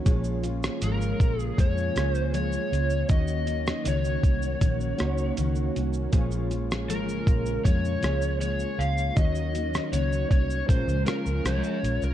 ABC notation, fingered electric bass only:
X:1
M:4/4
L:1/16
Q:1/4=79
K:Bbm
V:1 name="Fingered electric bass" clef=bass
B,,,4 A,,,2 B,,,2 F,,2 D,,4 D,,2 | E,,4 D,,2 C,,2 B,,,2 D,,2 D,,2 C,,2 | B,,,4 A,,,2 B,,,2 F,,2 D,,4 D,,2 | E,,4 D,,2 C,,2 B,,, D,, z D,, C,, z B,,, C,, |]